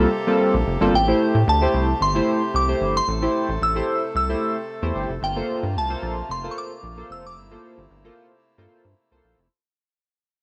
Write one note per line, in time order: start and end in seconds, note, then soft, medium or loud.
0.00 0.90 C3 medium
0.00 0.90 A#3 medium
0.00 0.91 G4 medium
0.00 0.90 A4 medium
0.00 0.36 G6 loud
0.27 0.54 G3 medium
0.27 0.54 A#3 medium
0.27 0.54 C4 medium
0.27 0.55 F4 medium
0.27 0.55 A4 medium
0.54 0.63 A#1 loud
0.67 0.77 F1 loud
0.81 0.90 G1 loud
0.81 0.93 G3 medium
0.81 0.94 A#3 medium
0.81 0.94 C4 medium
0.81 0.94 F4 medium
0.81 0.94 A4 loud
0.94 1.13 A1 loud
0.94 9.47 C3 medium
0.94 9.47 A3 medium
0.94 3.06 G4 medium
0.94 1.50 G5 medium
1.07 1.35 A3 medium
1.07 1.35 E4 medium
1.07 1.35 G4 medium
1.07 1.35 C5 medium
1.35 1.44 A2 medium
1.47 1.67 D2 loud
1.47 1.98 A5 medium
1.61 1.88 A3 medium
1.61 1.89 E4 medium
1.61 1.89 G4 medium
1.61 1.89 C5 loud
1.74 1.94 C2 loud
2.01 2.20 G1 medium
2.01 2.57 C6 medium
2.15 2.42 A3 medium
2.15 2.42 E4 medium
2.15 2.42 G4 medium
2.15 2.42 C5 loud
2.54 2.74 C2 loud
2.54 2.97 D6 loud
2.68 2.95 A3 medium
2.68 2.96 E4 medium
2.68 2.96 G4 medium
2.68 2.96 C5 medium
2.81 3.01 G1 loud
2.97 3.64 C6 loud
3.08 3.28 A1 loud
3.08 5.20 A4 medium
3.22 3.49 A3 medium
3.22 3.49 E4 medium
3.22 3.49 G4 medium
3.22 3.49 C5 medium
3.49 3.58 A1 loud
3.62 3.81 A1 loud
3.62 4.12 E6 loud
3.75 4.03 A3 medium
3.75 4.03 E4 medium
3.75 4.03 G4 medium
3.75 4.03 C5 loud
4.15 4.35 C2 loud
4.15 4.92 E6 loud
4.29 4.56 A3 medium
4.29 4.56 E4 medium
4.29 4.57 G4 medium
4.29 4.57 C5 medium
4.82 4.92 E2 loud
4.82 5.10 A3 medium
4.82 5.10 E4 medium
4.82 5.10 G4 medium
4.82 5.10 C5 loud
4.95 5.06 G1 loud
5.10 5.19 F1 loud
5.22 5.42 G1 loud
5.22 9.47 A#3 medium
5.22 7.35 F4 medium
5.22 5.78 G5 medium
5.36 5.63 A#3 medium
5.36 5.64 F4 medium
5.36 5.64 A4 medium
5.36 5.64 C5 loud
5.63 5.77 G2 loud
5.76 5.95 C2 medium
5.76 6.32 A5 medium
5.90 6.17 A#3 medium
5.90 6.17 F4 medium
5.90 6.17 A4 medium
5.90 6.17 C5 loud
6.03 6.22 A#1 loud
6.29 6.49 F1 loud
6.29 6.51 C6 loud
6.43 6.71 A#3 medium
6.43 6.71 F4 medium
6.43 6.71 A4 medium
6.43 6.71 C5 medium
6.51 6.57 C#6 medium
6.58 7.12 D6 loud
6.83 7.03 A#1 medium
6.97 7.24 A#3 medium
6.97 7.24 F4 medium
6.97 7.24 A4 medium
6.97 7.25 C5 medium
7.10 7.38 F1 medium
7.10 7.25 E6 loud
7.26 8.94 D6 loud
7.37 7.56 G1 loud
7.37 9.49 E4 medium
7.51 7.78 A#3 medium
7.51 7.78 F4 medium
7.51 7.78 A4 medium
7.51 7.78 C5 medium
7.78 7.87 G1 loud
7.90 8.10 G1 loud
8.04 8.31 A#3 loud
8.04 8.31 F4 loud
8.04 8.31 A4 medium
8.04 8.32 C5 loud
8.57 8.67 G2 loud
8.57 8.85 A#3 loud
8.57 8.85 F4 loud
8.57 8.85 A4 medium
8.57 8.85 C5 loud
8.85 8.94 G2 medium
9.11 9.21 C2 medium
9.11 9.38 A#3 medium
9.11 9.39 F4 medium
9.11 9.39 A4 medium
9.11 9.39 C5 loud
9.24 9.34 A#1 medium
9.38 9.47 F1 loud